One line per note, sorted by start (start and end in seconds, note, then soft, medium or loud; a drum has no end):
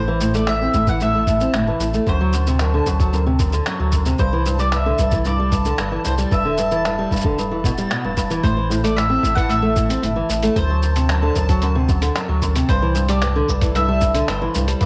0.00 0.68 A1 loud
0.00 0.35 C5 medium
0.00 14.86 A5 medium
0.08 0.20 E3 medium
0.21 0.33 A2 medium
0.21 cabasa medium
0.34 0.46 A3 medium
0.34 0.48 D5 medium
0.34 cabasa soft
0.47 0.60 A2 medium
0.47 0.89 E5 medium
0.47 finger snap loud
0.47 cabasa soft
0.62 0.74 C4 medium
0.74 1.48 A1 medium
0.74 0.86 A2 medium
0.74 kick medium
0.74 cabasa medium
0.87 0.99 E3 medium
0.87 1.02 F#5 loud
0.87 kick loud
0.87 cabasa soft
1.00 1.13 A2 medium
1.00 2.08 E5 loud
1.00 cabasa soft
1.15 1.26 A3 medium
1.27 1.39 A2 medium
1.27 kick medium
1.27 cabasa medium
1.41 1.53 C4 medium
1.41 cabasa soft
1.53 1.73 G1 medium
1.53 1.66 A2 medium
1.53 finger snap loud
1.53 cabasa soft
1.67 1.79 E3 medium
1.79 1.99 A1 loud
1.79 1.92 A2 medium
1.79 cabasa medium
1.94 2.06 A3 medium
1.94 cabasa soft
2.07 2.81 D2 loud
2.07 2.19 F#2 medium
2.07 3.90 C5 medium
2.07 kick loud
2.07 cabasa soft
2.21 2.33 F#3 medium
2.33 2.46 F#2 medium
2.33 cabasa medium
2.47 2.59 C3 medium
2.47 cabasa soft
2.59 2.72 F#2 medium
2.59 finger snap loud
2.59 cabasa soft
2.74 2.86 D3 medium
2.86 3.61 D2 medium
2.86 2.99 F#2 medium
2.86 kick medium
2.86 cabasa medium
3.00 3.13 F#3 medium
3.00 kick loud
3.00 cabasa soft
3.13 3.25 F#2 medium
3.13 cabasa soft
3.26 3.38 C3 medium
3.39 3.52 F#2 medium
3.39 kick medium
3.39 cabasa medium
3.52 3.65 D3 medium
3.52 cabasa soft
3.66 3.78 F#2 medium
3.66 finger snap loud
3.66 cabasa soft
3.80 4.14 D2 medium
3.80 3.92 F#3 medium
3.92 4.05 F#2 medium
3.92 kick medium
3.92 cabasa medium
4.05 4.18 C3 medium
4.05 cabasa soft
4.18 4.93 C2 loud
4.18 4.31 G2 medium
4.18 4.59 C5 medium
4.18 kick loud
4.18 cabasa soft
4.33 4.45 E3 medium
4.46 4.58 G2 medium
4.46 cabasa medium
4.59 4.72 G3 medium
4.59 4.73 D5 loud
4.59 cabasa soft
4.72 4.84 G2 medium
4.72 5.22 E5 loud
4.72 finger snap loud
4.72 cabasa soft
4.86 4.98 D3 medium
4.98 5.73 C2 medium
4.98 5.11 G2 medium
4.98 kick medium
4.98 cabasa medium
5.11 5.25 E3 medium
5.11 kick loud
5.11 cabasa soft
5.25 5.38 G2 medium
5.25 6.02 D5 loud
5.25 cabasa soft
5.39 5.52 G3 medium
5.52 5.64 G2 medium
5.52 kick medium
5.52 cabasa medium
5.65 5.77 D3 medium
5.65 cabasa soft
5.78 5.98 G1 medium
5.78 5.91 G2 medium
5.78 finger snap loud
5.78 cabasa soft
5.92 6.04 E3 medium
6.05 6.25 C2 loud
6.05 6.17 G2 medium
6.05 6.13 C5 medium
6.05 cabasa medium
6.18 6.31 G3 medium
6.18 cabasa soft
6.32 7.06 E1 loud
6.32 6.44 G2 medium
6.32 7.87 E5 medium
6.32 kick loud
6.32 cabasa soft
6.45 6.57 D3 medium
6.58 6.70 G2 medium
6.58 cabasa medium
6.71 6.83 E3 medium
6.71 cabasa soft
6.85 6.97 G2 medium
6.85 finger snap loud
6.85 cabasa soft
6.99 7.11 G3 medium
7.11 7.85 E1 medium
7.11 7.24 G2 medium
7.11 kick medium
7.11 cabasa soft
7.16 cabasa soft
7.21 kick loud
7.21 cabasa medium
7.25 7.37 D3 medium
7.38 7.50 G2 medium
7.38 cabasa soft
7.51 7.63 E3 medium
7.64 7.72 B2 medium
7.64 kick loud
7.64 cabasa medium
7.78 7.90 G3 medium
7.78 cabasa soft
7.91 8.03 B2 medium
7.91 finger snap loud
7.91 cabasa soft
8.04 8.39 E1 medium
8.04 8.16 G2 medium
8.17 8.29 G2 medium
8.17 kick medium
8.17 cabasa medium
8.30 8.43 E3 medium
8.30 cabasa soft
8.43 9.18 A1 loud
8.43 8.56 A2 medium
8.43 8.81 C5 medium
8.43 kick loud
8.43 closed hi-hat soft
8.43 cabasa soft
8.57 8.69 E3 medium
8.70 8.82 A2 medium
8.70 cabasa medium
8.84 8.96 A3 medium
8.84 8.98 D5 medium
8.84 closed hi-hat soft
8.84 cabasa soft
8.96 9.09 A2 medium
8.96 9.35 E5 medium
8.96 finger snap medium
8.96 closed hi-hat soft
8.96 cabasa soft
9.10 9.23 C4 medium
9.23 9.97 A1 medium
9.23 9.35 A2 medium
9.23 kick medium
9.23 cabasa medium
9.35 9.49 E3 medium
9.35 9.50 F#5 medium
9.35 kick loud
9.35 closed hi-hat soft
9.35 cabasa soft
9.49 9.62 A2 medium
9.49 10.56 E5 loud
9.49 closed hi-hat soft
9.49 cabasa soft
9.62 9.75 A3 medium
9.76 9.88 A2 medium
9.76 kick medium
9.76 cabasa medium
9.89 10.02 C4 medium
9.89 closed hi-hat medium
9.89 cabasa soft
10.02 10.23 G1 medium
10.02 10.15 A2 medium
10.02 closed hi-hat soft
10.02 cabasa soft
10.16 10.28 E3 medium
10.29 10.49 A1 loud
10.29 10.41 A2 medium
10.29 cabasa medium
10.43 10.55 A3 medium
10.43 closed hi-hat soft
10.43 cabasa soft
10.56 11.30 D2 loud
10.56 10.68 F#2 medium
10.56 12.38 C5 medium
10.56 kick loud
10.56 closed hi-hat soft
10.56 cabasa soft
10.70 10.82 F#3 medium
10.83 10.95 F#2 medium
10.83 cabasa medium
10.96 11.08 C3 medium
10.96 closed hi-hat medium
10.96 cabasa soft
11.09 11.21 F#2 medium
11.09 finger snap loud
11.09 closed hi-hat soft
11.09 cabasa soft
11.22 11.35 D3 medium
11.36 12.10 D2 medium
11.36 11.48 F#2 medium
11.36 kick medium
11.36 cabasa medium
11.49 11.62 F#3 medium
11.49 kick loud
11.49 closed hi-hat medium
11.49 cabasa soft
11.62 11.74 F#2 medium
11.62 closed hi-hat soft
11.62 cabasa soft
11.75 11.88 C3 medium
11.88 12.01 F#2 medium
11.88 kick loud
11.88 cabasa medium
12.02 12.14 D3 medium
12.02 closed hi-hat medium
12.02 cabasa soft
12.16 12.28 F#2 medium
12.16 finger snap loud
12.16 closed hi-hat soft
12.16 cabasa soft
12.29 12.63 D2 medium
12.29 12.42 F#3 medium
12.42 12.54 F#2 medium
12.42 kick medium
12.42 cabasa medium
12.56 12.68 C3 medium
12.56 closed hi-hat medium
12.56 cabasa soft
12.69 13.43 C2 loud
12.69 12.81 G2 medium
12.69 13.09 C5 medium
12.69 kick loud
12.69 closed hi-hat soft
12.69 cabasa soft
12.82 12.94 E3 medium
12.95 13.07 G2 medium
12.95 cabasa medium
13.09 13.21 G3 medium
13.09 13.76 D5 loud
13.09 closed hi-hat medium
13.09 cabasa soft
13.22 13.34 G2 medium
13.22 finger snap medium
13.22 closed hi-hat soft
13.22 cabasa soft
13.36 13.47 D3 medium
13.48 14.23 C2 medium
13.48 13.61 G2 medium
13.48 kick medium
13.48 cabasa medium
13.61 13.74 E3 medium
13.61 kick loud
13.61 closed hi-hat medium
13.61 cabasa soft
13.75 13.87 G2 medium
13.75 14.25 E5 loud
13.75 closed hi-hat soft
13.75 cabasa soft
13.88 14.01 G3 medium
14.01 14.14 G2 medium
14.01 kick medium
14.01 cabasa medium
14.14 14.27 D3 medium
14.14 closed hi-hat medium
14.14 cabasa soft
14.28 14.48 G1 loud
14.28 14.40 G2 medium
14.28 14.82 C5 medium
14.28 finger snap loud
14.28 closed hi-hat soft
14.28 cabasa soft
14.41 14.53 E3 medium
14.54 14.74 C2 loud
14.54 14.67 G2 medium
14.54 cabasa medium
14.68 14.80 G3 medium
14.68 closed hi-hat medium
14.68 cabasa soft
14.81 14.86 E1 loud
14.81 14.86 G2 medium
14.81 14.86 D5 medium
14.81 kick loud
14.81 closed hi-hat soft
14.81 cabasa soft